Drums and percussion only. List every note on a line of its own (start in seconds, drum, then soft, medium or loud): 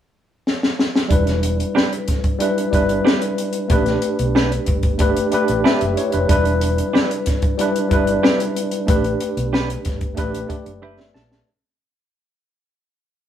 0.47 snare medium
0.63 snare medium
0.79 snare medium
0.96 snare medium
1.11 kick medium
1.11 closed hi-hat medium
1.27 snare soft
1.27 closed hi-hat soft
1.43 closed hi-hat medium
1.60 closed hi-hat soft
1.77 snare medium
1.93 closed hi-hat soft
2.08 kick medium
2.08 snare soft
2.08 closed hi-hat medium
2.24 kick medium
2.24 closed hi-hat soft
2.40 closed hi-hat medium
2.58 closed hi-hat medium
2.73 kick medium
2.73 closed hi-hat medium
2.89 closed hi-hat soft
3.07 snare loud
3.22 closed hi-hat medium
3.38 closed hi-hat medium
3.53 closed hi-hat soft
3.70 kick medium
3.70 closed hi-hat medium
3.86 snare soft
3.86 closed hi-hat soft
4.02 closed hi-hat medium
4.19 closed hi-hat soft
4.36 snare medium
4.52 closed hi-hat soft
4.66 kick medium
4.66 closed hi-hat medium
4.83 kick medium
4.83 closed hi-hat soft
4.99 kick medium
4.99 closed hi-hat medium
5.17 closed hi-hat medium
5.32 closed hi-hat medium
5.48 closed hi-hat soft
5.66 snare loud
5.81 closed hi-hat soft
5.97 closed hi-hat medium
6.12 closed hi-hat soft
6.29 kick medium
6.29 closed hi-hat medium
6.45 closed hi-hat soft
6.61 closed hi-hat medium
6.78 closed hi-hat soft
6.95 snare medium
7.11 closed hi-hat soft
7.26 kick medium
7.26 snare soft
7.26 closed hi-hat medium
7.42 kick medium
7.42 closed hi-hat soft
7.59 closed hi-hat medium
7.76 closed hi-hat medium
7.91 kick medium
7.91 closed hi-hat medium
8.07 closed hi-hat soft
8.25 snare loud
8.40 closed hi-hat medium
8.56 closed hi-hat medium
8.71 closed hi-hat medium
8.88 kick medium
8.88 closed hi-hat medium
9.04 closed hi-hat soft
9.21 closed hi-hat medium
9.37 closed hi-hat medium
9.54 snare medium
9.70 closed hi-hat soft
9.85 kick medium
9.85 snare soft
9.85 closed hi-hat medium
10.01 kick medium
10.01 closed hi-hat soft
10.17 kick medium
10.17 closed hi-hat medium
10.34 closed hi-hat medium
10.50 kick medium
10.50 closed hi-hat medium
10.66 closed hi-hat soft
11.00 snare medium
11.15 snare medium
11.32 snare medium